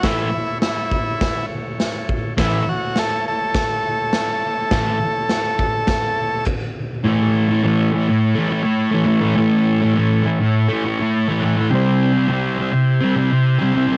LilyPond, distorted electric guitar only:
\new Staff \with { instrumentName = "Distorted electric guitar" } { \clef bass \time 4/4 \key a \mixolydian \tempo 4 = 103 <a, e a>8 r2. r8 | <a, e a>8 r2. r8 | <a, e a>8 r2. r8 | <a, e a>8. <e a>16 <a, e a>8 <a, e a>8. <e a>16 <a, e a>8. <a, e a>16 <a, e a>16 <e a>16 |
<a, e a>8. <e a>16 <a, e a>8 <a, e a>8. <e a>16 <a, e a>8. <a, e a>16 <a, e a>16 <e a>16 | <c g c'>8. <g c'>16 <c g c'>8 <c g c'>8. <g c'>16 <c g c'>8. <c g c'>16 <c g c'>16 <g c'>16 | }